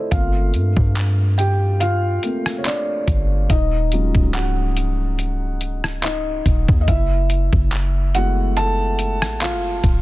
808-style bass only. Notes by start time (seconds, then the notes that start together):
0.12 G1
0.54 G2
0.77 G2
3.08 G1
3.50 D#1
4.15 C#1
6.46 D#1
6.69 D#2
6.88 F#1
7.53 F#1
9.22 A1
9.53 F#1
9.84 D1